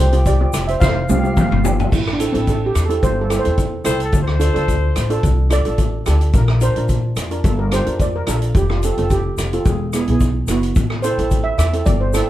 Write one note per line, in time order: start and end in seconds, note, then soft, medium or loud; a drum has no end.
0.00 0.43 C2 loud
0.00 0.25 A4 medium
0.00 0.27 C5 medium
0.12 0.29 C4 medium
0.12 0.29 F4 medium
0.12 0.29 G4 medium
0.12 closed hi-hat medium
0.12 shaker soft
0.26 0.67 G4 medium
0.26 0.70 D5 medium
0.26 kick medium
0.26 closed hi-hat medium
0.26 shaker medium
0.41 0.81 C4 medium
0.41 0.81 F4 medium
0.41 0.82 G4 medium
0.53 0.76 F1 medium
0.53 cross-stick medium
0.53 closed hi-hat medium
0.53 shaker loud
0.67 0.81 C5 medium
0.67 0.81 E5 medium
0.67 closed hi-hat medium
0.67 shaker soft
0.80 1.04 F1 medium
0.80 0.89 C5 medium
0.80 0.87 F5 loud
0.80 kick loud
0.80 snare medium
0.80 shaker medium
0.88 0.93 F5 medium
0.94 1.02 F5 medium
1.04 1.11 F5 medium
1.09 1.43 C2 medium
1.09 1.18 C4 medium
1.09 1.18 F4 medium
1.09 1.19 G4 medium
1.09 1.18 F5 medium
1.09 high tom medium
1.09 shaker loud
1.19 1.48 C4 medium
1.19 1.24 F5 medium
1.23 1.48 F4 medium
1.23 1.48 G4 medium
1.23 1.33 F5 medium
1.23 shaker soft
1.34 1.40 F5 medium
1.34 kick medium
1.34 mid tom medium
1.34 shaker medium
1.41 1.48 F5 medium
1.49 1.84 G1 medium
1.49 1.56 F5 medium
1.49 mid tom medium
1.64 1.92 C4 medium
1.64 1.92 F4 medium
1.64 1.92 G4 medium
1.64 floor tom loud
1.64 shaker loud
1.80 floor tom medium
1.80 shaker soft
1.92 2.26 A1 medium
1.92 2.13 E4 medium
1.92 kick loud
1.92 crash medium
1.92 shaker medium
2.07 cross-stick medium
2.13 2.29 D4 medium
2.20 2.29 C4 medium
2.20 2.29 E4 medium
2.20 2.29 A4 medium
2.20 closed hi-hat medium
2.20 shaker medium
2.32 2.67 A1 medium
2.32 2.50 C4 medium
2.32 2.67 C4 medium
2.32 2.67 E4 medium
2.32 2.67 A4 medium
2.32 closed hi-hat medium
2.47 2.66 A4 medium
2.47 kick medium
2.47 closed hi-hat medium
2.47 shaker medium
2.66 2.74 G4 medium
2.75 2.98 E2 medium
2.75 cross-stick medium
2.75 closed hi-hat medium
2.75 shaker medium
2.86 3.14 C4 medium
2.86 3.14 E4 medium
2.86 3.04 A4 medium
2.86 3.14 A4 medium
2.90 closed hi-hat medium
2.90 shaker soft
3.03 3.37 G1 medium
3.03 3.22 C5 medium
3.03 kick medium
3.03 closed hi-hat medium
3.03 shaker medium
3.21 3.40 A4 medium
3.30 3.39 C4 medium
3.30 3.39 E4 medium
3.30 3.39 A4 medium
3.30 cross-stick medium
3.30 closed hi-hat medium
3.30 shaker medium
3.39 3.65 C5 medium
3.44 3.79 E2 medium
3.44 3.69 C4 medium
3.44 3.70 E4 medium
3.44 3.70 A4 medium
3.44 closed hi-hat medium
3.57 kick medium
3.57 closed hi-hat medium
3.57 shaker medium
3.85 4.08 C2 medium
3.85 4.13 C4 medium
3.85 4.13 E4 medium
3.85 4.13 A4 medium
3.85 4.03 C5 loud
3.85 cross-stick medium
3.85 closed hi-hat medium
3.85 shaker loud
4.00 4.21 A4 medium
4.00 closed hi-hat medium
4.00 shaker soft
4.12 4.47 D2 medium
4.12 kick loud
4.12 closed hi-hat medium
4.12 shaker medium
4.23 5.29 C5 medium
4.27 cross-stick medium
4.40 4.49 D4 medium
4.40 4.49 F4 medium
4.40 4.49 A4 medium
4.40 closed hi-hat medium
4.40 shaker medium
4.54 4.89 D2 medium
4.54 4.88 D4 medium
4.54 4.88 F4 medium
4.54 4.88 A4 medium
4.54 closed hi-hat medium
4.68 kick medium
4.68 closed hi-hat medium
4.68 shaker medium
4.96 5.19 A1 medium
4.96 cross-stick medium
4.96 closed hi-hat medium
4.96 shaker medium
5.10 5.35 D4 medium
5.10 5.35 F4 medium
5.10 5.36 A4 medium
5.10 closed hi-hat medium
5.10 shaker soft
5.23 5.58 C2 loud
5.23 kick loud
5.23 closed hi-hat medium
5.23 shaker medium
5.50 5.60 D4 medium
5.50 5.60 F4 medium
5.50 5.60 A4 medium
5.50 6.09 D5 loud
5.50 cross-stick medium
5.50 closed hi-hat medium
5.50 shaker medium
5.65 5.99 A1 medium
5.65 5.91 D4 medium
5.65 5.91 F4 medium
5.65 5.91 A4 medium
5.65 closed hi-hat medium
5.78 kick medium
5.78 closed hi-hat medium
5.78 shaker medium
6.06 6.30 D2 medium
6.06 6.34 D4 medium
6.06 6.34 F4 medium
6.06 6.34 G4 medium
6.06 6.36 A4 medium
6.06 cross-stick medium
6.06 closed hi-hat medium
6.06 shaker medium
6.21 closed hi-hat medium
6.21 shaker soft
6.33 6.69 A#1 loud
6.33 6.63 A#4 medium
6.33 kick loud
6.33 closed hi-hat medium
6.33 shaker medium
6.48 cross-stick medium
6.61 6.71 D4 medium
6.61 6.71 F4 medium
6.61 6.71 A#4 medium
6.61 7.48 C5 medium
6.61 closed hi-hat medium
6.61 shaker medium
6.76 7.09 A#1 medium
6.76 7.10 D4 medium
6.76 7.10 F4 medium
6.76 7.10 A#4 medium
6.76 closed hi-hat medium
6.89 kick medium
6.89 closed hi-hat medium
6.89 shaker medium
7.16 7.39 F2 medium
7.16 cross-stick medium
7.16 closed hi-hat medium
7.16 shaker medium
7.31 7.56 D4 medium
7.31 7.56 F4 medium
7.31 7.57 A#4 medium
7.31 closed hi-hat medium
7.31 shaker soft
7.44 7.79 G1 loud
7.44 7.59 A4 medium
7.44 kick loud
7.44 closed hi-hat medium
7.44 shaker medium
7.59 7.71 A#4 medium
7.72 7.81 D4 medium
7.72 7.81 F4 medium
7.72 7.82 G4 medium
7.72 7.99 C5 medium
7.72 cross-stick medium
7.72 closed hi-hat medium
7.72 shaker medium
7.86 8.20 F2 medium
7.86 8.12 D4 medium
7.86 8.12 F4 medium
7.86 8.12 A#4 medium
7.86 closed hi-hat medium
8.00 8.16 D5 medium
8.00 kick medium
8.00 closed hi-hat medium
8.00 shaker medium
8.16 8.29 A#4 medium
8.27 8.50 A#1 medium
8.27 8.55 D4 medium
8.27 8.56 F4 medium
8.27 8.54 A4 medium
8.27 8.55 A#4 medium
8.27 cross-stick medium
8.27 closed hi-hat medium
8.27 shaker medium
8.42 closed hi-hat medium
8.42 shaker soft
8.54 8.89 F1 medium
8.54 8.71 G4 medium
8.54 kick loud
8.54 closed hi-hat medium
8.54 shaker medium
8.70 8.84 F4 medium
8.70 cross-stick medium
8.83 8.93 C4 medium
8.83 8.93 F4 medium
8.83 9.12 A4 medium
8.83 8.93 A4 medium
8.83 closed hi-hat medium
8.83 shaker medium
8.97 9.30 F1 medium
8.97 9.31 C4 medium
8.97 9.31 F4 medium
8.97 9.31 A4 medium
8.97 closed hi-hat medium
8.97 shaker soft
9.10 9.50 G4 medium
9.10 kick medium
9.10 closed hi-hat medium
9.10 shaker medium
9.38 9.60 F1 medium
9.38 cross-stick medium
9.38 closed hi-hat medium
9.38 shaker loud
9.53 9.66 C4 medium
9.53 9.66 F4 medium
9.53 9.66 A4 medium
9.53 closed hi-hat medium
9.53 shaker soft
9.65 10.00 E1 medium
9.65 10.18 G#4 medium
9.65 kick loud
9.65 closed hi-hat medium
9.65 shaker medium
9.93 10.03 B3 medium
9.93 10.03 E4 medium
9.93 10.03 G#4 medium
9.93 cross-stick medium
9.93 closed hi-hat medium
9.93 shaker loud
10.08 10.41 B1 medium
10.08 10.33 B3 medium
10.08 10.34 E4 medium
10.08 10.34 G#4 medium
10.08 closed hi-hat medium
10.20 kick medium
10.20 closed hi-hat medium
10.20 shaker medium
10.47 10.70 F#1 medium
10.47 10.77 B3 medium
10.47 10.77 E4 medium
10.47 10.77 F#4 medium
10.47 cross-stick medium
10.47 closed hi-hat medium
10.47 shaker loud
10.62 closed hi-hat medium
10.62 shaker soft
10.75 11.10 A1 medium
10.75 kick loud
10.75 closed hi-hat medium
10.75 shaker medium
10.90 cross-stick medium
11.02 11.13 C4 medium
11.02 11.13 E4 medium
11.02 11.13 A4 medium
11.02 11.42 C5 medium
11.02 closed hi-hat medium
11.02 shaker loud
11.18 11.51 A1 medium
11.18 11.51 C4 medium
11.18 11.52 E4 medium
11.18 11.52 A4 medium
11.18 closed hi-hat medium
11.31 kick medium
11.31 closed hi-hat medium
11.31 shaker medium
11.44 11.57 E5 loud
11.58 11.81 E2 medium
11.58 11.87 E5 medium
11.58 cross-stick medium
11.58 closed hi-hat medium
11.58 shaker loud
11.73 11.98 C4 medium
11.73 11.98 E4 medium
11.73 11.98 A4 medium
11.73 closed hi-hat medium
11.73 shaker soft
11.86 12.20 G1 loud
11.86 12.01 D5 loud
11.86 kick loud
11.86 closed hi-hat medium
11.86 shaker medium
12.01 12.06 C5 medium
12.14 12.23 C4 medium
12.14 12.23 E4 medium
12.14 12.30 A4 medium
12.14 12.23 A4 medium
12.14 cross-stick medium
12.14 closed hi-hat medium
12.14 shaker medium